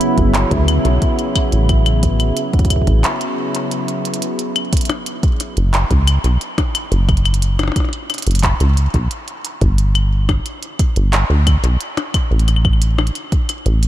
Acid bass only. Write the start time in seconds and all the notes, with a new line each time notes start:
0.18 G1
0.51 D2
0.85 B1
1.52 A1
2.87 A1
5.57 F#1
5.91 C#2
6.24 B1
6.92 F#1
8.27 F#1
8.60 C#2
8.94 B1
9.61 G1
10.96 G1
11.30 D2
11.64 B1
12.31 A1
13.66 A1